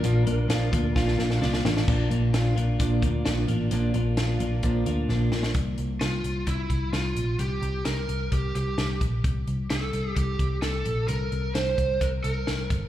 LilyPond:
<<
  \new Staff \with { instrumentName = "Lead electric guitar" } { \time 4/4 \key bes \lydian \tempo 4 = 130 bes'2. r4 | r1 | r1 | r4 f'4 e'4 f'4 |
g'4 bes'4 g'8 g'4 r8 | r4 a'4 g'4 a'4 | bes'4 c''4 bes'8 bes'4 r8 | }
  \new Staff \with { instrumentName = "Steel-string acoustic guitar" } { \time 4/4 \key bes \lydian <bes, f bes d' f'>8 <bes d' f'>8 <f bes d' f'>8 <bes d' f'>8 <bes, f bes d' f'>8 <bes d' f'>8 <f bes d' f'>8 <bes d' f'>8 | <bes, f bes d' f'>8 <bes d' f'>8 <f bes d' f'>8 <bes d' f'>8 <bes, f bes d' f'>8 <bes d' f'>8 <f bes d' f'>8 <bes d' f'>8 | <bes, f bes d' f'>8 <bes d' f'>8 <f bes d' f'>8 <bes d' f'>8 <bes, f bes d' f'>8 <bes d' f'>8 <f bes d' f'>8 <bes d' f'>8 | r1 |
r1 | r1 | r1 | }
  \new Staff \with { instrumentName = "Clean electric guitar" } { \time 4/4 \key bes \lydian <bes, bes d' f'>8 bes8 f'8 bes8 f'8 bes8 d'8 bes8 | bes,8 bes8 f'8 bes8 d'8 bes8 d'8 bes8 | bes,8 bes8 f'8 bes8 d'8 bes8 d'8 bes8 | r1 |
r1 | r1 | r1 | }
  \new Staff \with { instrumentName = "Picked electric bass" } { \clef bass \time 4/4 \key bes \lydian bes,,8 bes,,8 bes,,8 d,8 bes,,8 bes,,8 c,8 a,,8 | bes,,8 bes,,8 bes,,8 bes,,8 bes,,8 d,8 bes,,8 a,,8 | bes,,8 bes,,8 bes,,8 bes,,8 bes,,8 d,8 bes,,8 bes,,8 | c,8 c,8 c,8 c,8 c,8 c,8 c,8 bes,,8 |
c,8 c,8 c,8 c,8 c,8 c,8 c,8 bes,,8 | c,8 c,8 c,8 c,8 c,8 c,8 c,8 bes,,8 | c,8 c,8 c,8 c,8 c,8 c,8 c,8 g,,8 | }
  \new DrumStaff \with { instrumentName = "Drums" } \drummode { \time 4/4 hh8 hh8 <hh sn>8 <hh bd>8 <bd sn>16 sn16 sn16 sn16 sn16 sn16 sn16 sn16 | <cymc bd>8 hh8 <hh sn>8 hh8 <hh bd>8 <hh bd>8 <hh sn>8 hh8 | hh8 hh8 <hh sn>8 hh8 <hh bd>8 hh8 sn8 sn16 sn16 | <hh bd>8 hh8 <hh sn>8 hh8 <hh bd>8 <hh bd>8 <hh sn>8 hh8 |
hh8 hh8 <hh sn>8 hh8 <hh bd>8 hh8 <hh sn>8 <hh bd>8 | <hh bd>8 hh8 <hh sn>8 hh8 <hh bd>8 <hh bd>8 <hh sn>8 hh8 | hh8 hh8 <hh sn>8 <hh bd>8 <hh bd>8 hh8 <hh sn>8 <hh bd>8 | }
>>